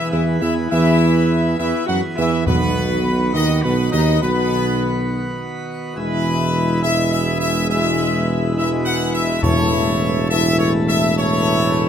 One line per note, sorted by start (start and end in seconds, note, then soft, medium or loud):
0.00 0.23 E2 loud
0.00 0.10 E3 medium
0.00 2.42 E3 medium
0.00 2.43 B3 medium
0.00 2.43 G#4 medium
0.00 2.43 B4 medium
0.00 0.10 E5 loud
0.11 0.40 E2 medium
0.11 0.40 E3 medium
0.11 0.38 E4 medium
0.11 0.25 E5 medium
0.39 0.69 E2 medium
0.39 0.68 E4 medium
0.39 0.55 E5 medium
0.44 0.57 E3 medium
0.69 1.56 E2 loud
0.69 1.56 E3 loud
0.69 1.54 E4 loud
0.69 1.55 E5 loud
1.58 1.73 E2 medium
1.58 1.87 E3 medium
1.58 1.86 E4 medium
1.58 1.86 E5 loud
1.86 2.02 F#2 medium
1.86 2.01 F#3 medium
1.86 1.99 F#4 medium
1.86 2.01 F#5 medium
2.15 2.45 E2 medium
2.15 2.45 E3 medium
2.15 2.44 E4 medium
2.15 2.45 E5 loud
2.44 3.36 B1 medium
2.44 3.75 E2 loud
2.44 3.31 B2 medium
2.44 5.97 D#3 medium
2.44 3.30 B3 medium
2.44 5.93 B3 medium
2.44 5.97 F#4 medium
2.44 3.31 B4 loud
2.44 5.93 B4 medium
3.34 3.64 D#2 medium
3.34 3.62 D#3 medium
3.34 3.47 D#4 medium
3.34 3.62 D#5 loud
3.62 3.92 B1 medium
3.62 3.92 B2 medium
3.62 3.76 B3 medium
3.62 3.93 B4 loud
3.91 4.21 D#2 medium
3.91 4.21 D#3 medium
3.91 4.20 D#4 medium
3.91 4.20 D#5 loud
4.21 5.50 B1 medium
4.21 5.49 B2 medium
4.21 5.49 B3 loud
4.21 5.49 B4 loud
5.95 9.39 E1 medium
5.95 6.80 B2 medium
5.95 9.39 E3 medium
5.95 6.80 E3 medium
5.95 6.79 G#3 medium
5.95 9.43 G#3 medium
5.95 6.79 E4 medium
5.95 9.39 E4 medium
5.95 6.79 B4 loud
5.95 9.39 B4 medium
6.82 7.66 B2 medium
6.82 7.66 E3 medium
6.82 7.65 G#3 medium
6.82 7.65 E4 medium
6.82 7.10 E5 loud
7.12 7.39 E5 loud
7.40 7.67 E5 loud
7.68 8.52 B2 medium
7.68 8.52 E3 medium
7.68 8.52 G#3 medium
7.68 8.52 E4 medium
7.68 8.53 E5 loud
8.55 9.39 B2 loud
8.55 9.39 E3 medium
8.55 9.38 G#3 medium
8.55 9.39 E4 medium
8.55 8.70 E5 loud
8.85 9.12 F#5 loud
9.13 9.41 E5 loud
9.41 11.89 E1 loud
9.41 10.70 E2 loud
9.41 10.28 A2 medium
9.41 11.89 E3 medium
9.41 10.26 E3 medium
9.41 11.89 A3 medium
9.41 10.26 A3 medium
9.41 11.89 E4 medium
9.41 10.26 E4 loud
9.41 11.89 A4 medium
9.41 10.26 C#5 loud
10.29 11.13 A2 medium
10.29 11.13 E3 medium
10.29 11.13 A3 medium
10.29 11.13 E4 medium
10.29 10.57 E5 loud
10.59 10.72 C#5 loud
10.88 11.15 E5 loud
11.17 11.89 A2 medium
11.17 11.89 E3 loud
11.17 11.89 A3 loud
11.17 11.89 E4 loud
11.17 11.89 C#5 loud